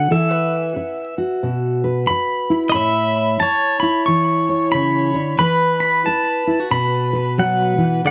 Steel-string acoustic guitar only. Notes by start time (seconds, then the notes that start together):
Already playing: D3
0.11 E3 A4
0.31 B4
0.76 muted steel-string acoustic guitar stroke
1.18 F#4
1.43 B2
1.84 B4
2.10 muted steel-string acoustic guitar stroke
2.50 E4
2.74 A2 C#5
3.41 muted steel-string acoustic guitar stroke
3.82 E4
4.08 E3
4.49 C#5
4.74 C#3
5.14 D3
5.39 E3 B4
6.07 muted steel-string acoustic guitar stroke
6.47 E4
6.59 F#4
6.71 B2
7.13 B4
7.38 F#3
7.78 E3
8.04 D3 A4